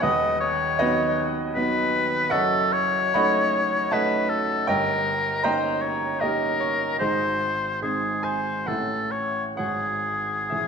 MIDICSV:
0, 0, Header, 1, 3, 480
1, 0, Start_track
1, 0, Tempo, 760456
1, 16, Time_signature, 3, 2, 24, 8
1, 1456, Tempo, 847458
1, 1936, Tempo, 770218
1, 4336, Tempo, 834492
1, 5296, Tempo, 914634
1, 6347, End_track
2, 0, Start_track
2, 0, Title_t, "Oboe"
2, 0, Program_c, 0, 68
2, 17, Note_on_c, 0, 75, 83
2, 252, Note_off_c, 0, 75, 0
2, 255, Note_on_c, 0, 73, 62
2, 796, Note_off_c, 0, 73, 0
2, 978, Note_on_c, 0, 71, 73
2, 1461, Note_on_c, 0, 69, 71
2, 1470, Note_off_c, 0, 71, 0
2, 1695, Note_on_c, 0, 73, 68
2, 1703, Note_off_c, 0, 69, 0
2, 2419, Note_on_c, 0, 71, 65
2, 2429, Note_off_c, 0, 73, 0
2, 2647, Note_on_c, 0, 69, 60
2, 2656, Note_off_c, 0, 71, 0
2, 2886, Note_off_c, 0, 69, 0
2, 2894, Note_on_c, 0, 70, 66
2, 3362, Note_on_c, 0, 72, 53
2, 3371, Note_off_c, 0, 70, 0
2, 3595, Note_on_c, 0, 73, 47
2, 3605, Note_off_c, 0, 72, 0
2, 3839, Note_on_c, 0, 70, 61
2, 3848, Note_off_c, 0, 73, 0
2, 4324, Note_off_c, 0, 70, 0
2, 4327, Note_on_c, 0, 72, 61
2, 4791, Note_off_c, 0, 72, 0
2, 4806, Note_on_c, 0, 68, 45
2, 5047, Note_on_c, 0, 72, 44
2, 5055, Note_off_c, 0, 68, 0
2, 5296, Note_on_c, 0, 69, 43
2, 5304, Note_off_c, 0, 72, 0
2, 5527, Note_on_c, 0, 73, 44
2, 5535, Note_off_c, 0, 69, 0
2, 5697, Note_off_c, 0, 73, 0
2, 5768, Note_on_c, 0, 68, 43
2, 6347, Note_off_c, 0, 68, 0
2, 6347, End_track
3, 0, Start_track
3, 0, Title_t, "Grand piano"
3, 0, Program_c, 1, 0
3, 0, Control_c, 1, 64, 127
3, 7, Note_on_c, 1, 78, 66
3, 13, Note_on_c, 1, 71, 59
3, 15, Note_on_c, 1, 75, 55
3, 20, Note_on_c, 1, 39, 58
3, 23, Note_on_c, 1, 27, 55
3, 26, Control_c, 1, 64, 0
3, 136, Control_c, 1, 64, 127
3, 472, Note_off_c, 1, 71, 0
3, 473, Note_off_c, 1, 75, 0
3, 494, Note_off_c, 1, 78, 0
3, 499, Note_on_c, 1, 75, 87
3, 503, Note_on_c, 1, 66, 63
3, 503, Note_on_c, 1, 71, 63
3, 511, Note_on_c, 1, 54, 44
3, 513, Note_on_c, 1, 59, 47
3, 517, Note_on_c, 1, 63, 51
3, 959, Note_off_c, 1, 54, 0
3, 960, Note_off_c, 1, 59, 0
3, 962, Note_off_c, 1, 63, 0
3, 988, Note_on_c, 1, 59, 48
3, 989, Note_on_c, 1, 54, 48
3, 996, Note_on_c, 1, 63, 51
3, 1192, Note_off_c, 1, 71, 0
3, 1193, Note_off_c, 1, 66, 0
3, 1216, Note_off_c, 1, 75, 0
3, 1433, Note_off_c, 1, 39, 0
3, 1435, Note_off_c, 1, 27, 0
3, 1436, Note_off_c, 1, 59, 0
3, 1437, Note_off_c, 1, 54, 0
3, 1440, Note_off_c, 1, 63, 0
3, 1451, Note_on_c, 1, 78, 82
3, 1457, Note_on_c, 1, 73, 65
3, 1457, Note_on_c, 1, 75, 61
3, 1464, Note_on_c, 1, 30, 49
3, 1465, Control_c, 1, 64, 0
3, 1465, Note_on_c, 1, 42, 55
3, 1565, Control_c, 1, 64, 127
3, 1915, Note_off_c, 1, 73, 0
3, 1915, Note_off_c, 1, 75, 0
3, 1922, Note_off_c, 1, 78, 0
3, 1928, Note_on_c, 1, 83, 100
3, 1931, Note_on_c, 1, 78, 68
3, 1934, Note_on_c, 1, 75, 66
3, 1939, Note_on_c, 1, 57, 45
3, 1940, Note_on_c, 1, 61, 47
3, 1941, Note_on_c, 1, 63, 52
3, 2392, Note_off_c, 1, 78, 0
3, 2394, Note_off_c, 1, 75, 0
3, 2396, Note_off_c, 1, 57, 0
3, 2397, Note_off_c, 1, 61, 0
3, 2398, Note_off_c, 1, 63, 0
3, 2408, Note_on_c, 1, 81, 71
3, 2413, Note_on_c, 1, 75, 57
3, 2414, Note_on_c, 1, 78, 57
3, 2415, Note_off_c, 1, 83, 0
3, 2419, Note_on_c, 1, 57, 44
3, 2424, Note_on_c, 1, 63, 47
3, 2425, Note_on_c, 1, 61, 46
3, 2861, Note_off_c, 1, 75, 0
3, 2862, Note_off_c, 1, 78, 0
3, 2864, Note_off_c, 1, 57, 0
3, 2867, Note_off_c, 1, 61, 0
3, 2867, Note_off_c, 1, 63, 0
3, 2869, Note_off_c, 1, 30, 0
3, 2869, Note_off_c, 1, 42, 0
3, 2883, Note_off_c, 1, 81, 0
3, 2883, Note_on_c, 1, 79, 70
3, 2887, Note_on_c, 1, 73, 48
3, 2887, Note_on_c, 1, 75, 51
3, 2891, Note_on_c, 1, 31, 48
3, 2895, Note_on_c, 1, 43, 45
3, 2899, Control_c, 1, 64, 0
3, 2997, Control_c, 1, 64, 127
3, 3338, Note_off_c, 1, 73, 0
3, 3338, Note_off_c, 1, 75, 0
3, 3354, Note_off_c, 1, 79, 0
3, 3357, Note_on_c, 1, 82, 80
3, 3363, Note_on_c, 1, 75, 61
3, 3364, Note_on_c, 1, 79, 62
3, 3366, Note_on_c, 1, 58, 39
3, 3369, Note_on_c, 1, 61, 38
3, 3371, Note_on_c, 1, 63, 45
3, 3822, Note_off_c, 1, 75, 0
3, 3822, Note_off_c, 1, 79, 0
3, 3823, Note_off_c, 1, 58, 0
3, 3824, Note_off_c, 1, 61, 0
3, 3826, Note_off_c, 1, 63, 0
3, 3841, Note_on_c, 1, 75, 63
3, 3844, Note_off_c, 1, 82, 0
3, 3851, Note_on_c, 1, 70, 50
3, 3852, Note_on_c, 1, 67, 51
3, 3857, Note_on_c, 1, 58, 39
3, 3858, Note_on_c, 1, 61, 37
3, 3860, Note_on_c, 1, 63, 40
3, 4076, Note_off_c, 1, 70, 0
3, 4077, Note_off_c, 1, 67, 0
3, 4085, Note_on_c, 1, 73, 69
3, 4088, Note_off_c, 1, 75, 0
3, 4313, Note_off_c, 1, 31, 0
3, 4315, Note_off_c, 1, 43, 0
3, 4318, Note_off_c, 1, 58, 0
3, 4318, Note_off_c, 1, 61, 0
3, 4319, Note_off_c, 1, 63, 0
3, 4332, Note_on_c, 1, 72, 59
3, 4334, Note_off_c, 1, 73, 0
3, 4337, Note_on_c, 1, 68, 45
3, 4338, Note_on_c, 1, 63, 42
3, 4342, Note_on_c, 1, 44, 43
3, 4343, Note_on_c, 1, 32, 37
3, 4346, Control_c, 1, 64, 0
3, 4443, Control_c, 1, 64, 127
3, 4800, Note_off_c, 1, 63, 0
3, 4804, Note_on_c, 1, 56, 35
3, 4809, Note_on_c, 1, 63, 35
3, 4810, Note_on_c, 1, 60, 33
3, 5025, Note_off_c, 1, 68, 0
3, 5040, Note_on_c, 1, 80, 64
3, 5046, Note_off_c, 1, 72, 0
3, 5274, Note_off_c, 1, 56, 0
3, 5276, Note_off_c, 1, 44, 0
3, 5276, Note_off_c, 1, 60, 0
3, 5276, Note_off_c, 1, 63, 0
3, 5277, Note_off_c, 1, 32, 0
3, 5288, Note_on_c, 1, 78, 53
3, 5293, Note_off_c, 1, 80, 0
3, 5296, Note_on_c, 1, 45, 41
3, 5300, Note_on_c, 1, 33, 37
3, 5300, Note_on_c, 1, 52, 31
3, 5300, Note_on_c, 1, 61, 28
3, 5309, Control_c, 1, 64, 0
3, 5420, Control_c, 1, 64, 127
3, 5750, Note_off_c, 1, 61, 0
3, 5751, Note_off_c, 1, 52, 0
3, 5755, Note_off_c, 1, 45, 0
3, 5757, Note_off_c, 1, 33, 0
3, 5759, Note_off_c, 1, 78, 0
3, 5766, Note_on_c, 1, 78, 58
3, 5774, Note_on_c, 1, 73, 37
3, 5776, Note_on_c, 1, 44, 34
3, 5780, Note_on_c, 1, 32, 26
3, 5782, Control_c, 1, 64, 0
3, 5869, Control_c, 1, 64, 127
3, 6239, Note_off_c, 1, 73, 0
3, 6253, Note_on_c, 1, 76, 41
3, 6256, Note_off_c, 1, 78, 0
3, 6262, Note_on_c, 1, 68, 33
3, 6262, Note_on_c, 1, 73, 29
3, 6266, Note_on_c, 1, 52, 29
3, 6267, Note_on_c, 1, 61, 32
3, 6347, Note_off_c, 1, 32, 0
3, 6347, Note_off_c, 1, 44, 0
3, 6347, Note_off_c, 1, 52, 0
3, 6347, Note_off_c, 1, 61, 0
3, 6347, Note_off_c, 1, 68, 0
3, 6347, Note_off_c, 1, 73, 0
3, 6347, Note_off_c, 1, 76, 0
3, 6347, End_track
0, 0, End_of_file